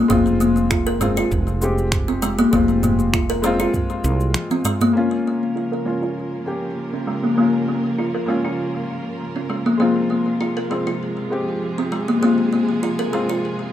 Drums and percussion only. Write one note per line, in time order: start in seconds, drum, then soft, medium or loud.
0.10 kick medium
0.10 mid tom medium
0.10 cabasa soft
0.27 cabasa soft
0.41 cabasa medium
0.57 cabasa soft
0.71 finger snap loud
0.71 kick loud
0.71 cabasa soft
0.87 cabasa soft
1.01 mid tom medium
1.01 cabasa medium
1.17 cabasa soft
1.31 kick loud
1.31 cabasa soft
1.47 cabasa soft
1.62 cabasa medium
1.78 cabasa soft
1.92 finger snap loud
1.92 kick loud
1.92 mid tom medium
1.92 cabasa soft
2.08 cabasa soft
2.22 cabasa medium
2.39 cabasa soft
2.53 kick loud
2.53 cabasa soft
2.69 cabasa soft
2.83 mid tom medium
2.83 cabasa medium
3.00 cabasa soft
3.13 finger snap loud
3.13 kick loud
3.13 cabasa soft
3.30 cabasa soft
3.44 cabasa medium
3.60 cabasa soft
3.74 kick medium
3.74 mid tom medium
3.74 cabasa soft
3.90 cabasa soft
4.04 cabasa medium
4.20 cabasa soft
4.34 finger snap loud
4.34 high tom medium
4.34 cabasa soft
4.51 high tom medium
4.51 cabasa soft
4.65 mid tom medium
4.65 cabasa medium
4.81 mid tom medium
4.81 cabasa soft